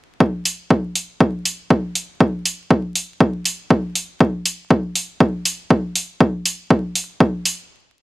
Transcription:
0.20 kick loud
0.45 open hi-hat medium
0.70 kick loud
0.95 open hi-hat medium
1.20 kick loud
1.45 open hi-hat medium
1.70 kick loud
1.95 open hi-hat medium
2.20 kick loud
2.45 open hi-hat loud
2.70 kick loud
2.95 open hi-hat medium
3.20 kick loud
3.45 open hi-hat loud
3.70 kick loud
3.95 open hi-hat medium
4.20 kick loud
4.45 open hi-hat loud
4.70 kick loud
4.95 open hi-hat medium
5.20 kick loud
5.45 open hi-hat loud
5.70 kick loud
5.95 open hi-hat medium
6.20 kick loud
6.45 open hi-hat loud
6.70 kick loud
6.95 open hi-hat medium
7.20 kick loud
7.45 open hi-hat loud

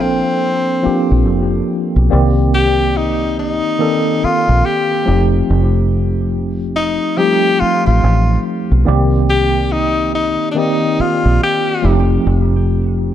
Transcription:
0.00 0.22 A#1 medium
0.00 0.83 F3 medium
0.00 0.83 A#3 medium
0.00 0.84 C4 medium
0.00 1.27 C4 medium
0.00 0.85 D4 medium
0.00 2.12 A4 medium
0.83 1.92 F3 medium
0.83 1.92 A#3 medium
0.83 1.92 C4 medium
0.83 1.93 D4 medium
0.83 1.93 G4 medium
0.83 muted fingered electric bass stroke soft
1.11 1.28 A#1 medium
1.28 1.60 F1 medium
1.96 2.08 B1 medium
2.09 2.17 D3 medium
2.09 3.52 A#3 medium
2.09 3.52 C4 medium
2.09 3.53 G4 medium
2.09 3.53 D5 medium
2.13 3.60 C2 loud
2.13 3.55 D#3 medium
2.54 2.98 G4 loud
2.97 3.38 D#4 medium
3.39 4.26 D#4 medium
3.78 5.06 D#3 medium
3.78 5.06 A#3 medium
3.78 5.05 C4 medium
3.78 5.07 A4 medium
3.78 5.07 D5 medium
4.24 4.67 F4 loud
4.24 muted fingered electric bass stroke soft
4.49 4.61 A#1 loud
4.66 5.32 G4 medium
5.05 5.41 F1 loud
5.05 6.48 F3 medium
5.05 6.48 A3 medium
5.05 6.48 C4 medium
5.05 6.49 D#4 medium
5.05 6.49 G4 medium
5.50 6.98 F1 loud
6.76 7.19 D#4 loud
7.17 8.59 F3 medium
7.17 7.25 G3 medium
7.17 8.60 C4 medium
7.17 8.60 D#4 medium
7.17 7.62 G4 loud
7.17 8.61 G4 medium
7.24 8.63 A3 medium
7.60 7.85 F4 loud
7.60 muted fingered electric bass stroke soft
7.86 8.00 A1 medium
7.86 8.41 F4 medium
8.04 8.36 A1 loud
8.71 8.84 B1 medium
8.85 10.36 C2 loud
8.85 10.28 D#3 medium
8.85 10.28 A#3 medium
8.85 10.28 C4 medium
8.85 10.29 G4 loud
8.85 10.29 D5 medium
9.30 9.74 G4 loud
9.72 10.14 D#4 loud
10.15 10.48 D#4 medium
10.52 11.82 D#3 medium
10.52 11.82 A#3 medium
10.52 10.60 D4 medium
10.56 11.82 C4 medium
10.56 11.02 D#4 medium
10.56 11.83 G4 medium
10.56 11.83 D5 medium
11.00 11.41 F4 loud
11.00 muted fingered electric bass stroke soft
11.25 11.38 A#1 medium
11.43 12.05 G4 medium
11.82 12.17 F1 medium
11.82 13.14 F3 medium
11.82 13.14 A3 medium
11.82 13.14 C4 medium
11.82 13.14 D#4 medium
11.82 13.14 G4 medium
12.27 13.14 F1 loud

